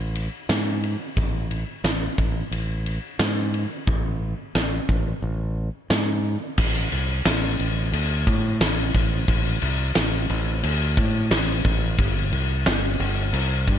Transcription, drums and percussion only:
0.15 ride
0.49 snare, ride
0.83 ride
1.17 kick, ride
1.51 ride
1.84 snare, ride
2.18 kick, ride
2.52 ride
2.86 ride
3.20 snare, ride
3.54 ride
3.87 kick
4.55 snare
4.89 kick
5.90 snare
6.58 kick, crash
6.92 crash
7.25 snare, crash
7.59 crash
7.93 crash
8.27 kick, crash
8.61 snare, crash
8.95 kick, crash
9.28 kick, crash
9.62 crash
9.95 snare, crash
10.30 crash
10.63 crash
10.97 kick, crash
11.31 snare, crash
11.65 kick, crash
11.98 kick, crash
12.32 crash
12.66 snare, crash
13.00 crash
13.34 crash
13.68 kick, crash

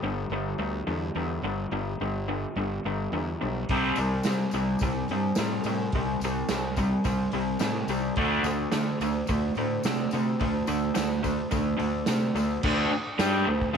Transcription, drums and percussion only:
3.69 kick, open hi-hat
3.96 open hi-hat, tambourine
4.23 snare, open hi-hat, tambourine
4.51 open hi-hat, tambourine
4.79 kick, open hi-hat, tambourine
5.08 open hi-hat, tambourine
5.35 snare, open hi-hat, tambourine
5.64 open hi-hat, tambourine
5.92 kick, open hi-hat
6.21 open hi-hat, tambourine
6.49 snare, open hi-hat, tambourine
6.77 kick, open hi-hat, tambourine
7.04 kick, open hi-hat, tambourine
7.32 open hi-hat, tambourine
7.59 snare, open hi-hat, tambourine
7.88 open hi-hat, tambourine
8.16 kick, open hi-hat
8.44 open hi-hat, tambourine
8.72 snare, open hi-hat, tambourine
9.01 open hi-hat, tambourine
9.27 kick, open hi-hat, tambourine
9.55 open hi-hat, tambourine
9.83 snare, open hi-hat, tambourine
10.11 open hi-hat, tambourine
10.39 kick, open hi-hat, tambourine
10.67 open hi-hat, tambourine
10.95 snare, open hi-hat, tambourine
11.24 kick, open hi-hat, tambourine
11.51 kick, open hi-hat, tambourine
11.79 open hi-hat, tambourine
12.06 snare, open hi-hat, tambourine
12.36 open hi-hat, tambourine
12.63 kick, crash
13.19 snare, tambourine, crash
13.61 kick

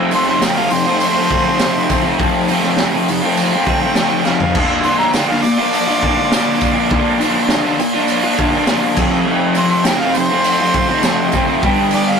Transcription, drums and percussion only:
0.11 open hi-hat, tambourine
0.26 snare
0.42 snare, open hi-hat, tambourine
0.70 open hi-hat, tambourine
1.00 open hi-hat, tambourine
1.30 kick, open hi-hat, tambourine
1.59 snare, open hi-hat, tambourine
1.90 kick, open hi-hat, tambourine
2.19 kick, open hi-hat
2.48 open hi-hat, tambourine
2.63 snare
2.77 snare, open hi-hat, tambourine
3.08 open hi-hat, tambourine
3.37 open hi-hat, tambourine
3.66 kick, open hi-hat, tambourine
3.95 snare, open hi-hat, tambourine
4.25 snare, tambourine
4.40 floor tom
4.55 kick, crash
4.83 open hi-hat, tambourine
4.99 snare
5.13 snare, open hi-hat, tambourine
5.44 open hi-hat, tambourine
5.73 open hi-hat, tambourine
6.02 kick, open hi-hat, tambourine
6.32 snare, open hi-hat, tambourine
6.61 kick, open hi-hat, tambourine
6.90 kick, open hi-hat
7.21 open hi-hat, tambourine
7.49 snare, open hi-hat, tambourine
7.80 open hi-hat, tambourine
8.08 open hi-hat, tambourine
8.38 kick, open hi-hat, tambourine
8.67 snare, open hi-hat, tambourine
8.96 kick, tambourine, crash
9.55 open hi-hat, tambourine
9.85 snare, open hi-hat, tambourine
10.14 open hi-hat, tambourine
10.44 open hi-hat, tambourine
10.73 kick, open hi-hat, tambourine
11.03 snare, open hi-hat, tambourine
11.32 kick, open hi-hat, tambourine
11.63 kick, open hi-hat
11.91 open hi-hat, tambourine

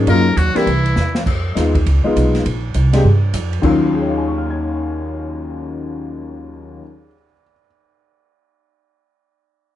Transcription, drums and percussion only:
0.07 kick, ride
0.37 kick, hi-hat pedal, ride
0.56 snare, ride
0.67 kick, ride
0.86 ride
0.96 snare, hi-hat pedal
1.15 snare
1.26 kick, crash
1.56 kick, snare, hi-hat pedal, ride
1.75 kick, ride
1.86 kick, ride
2.16 kick, hi-hat pedal, ride
2.34 snare, ride
2.46 kick, ride
2.74 kick, hi-hat pedal, ride
2.93 snare, ride
3.04 kick
3.34 kick, hi-hat pedal, ride
3.53 ride
3.63 kick, crash

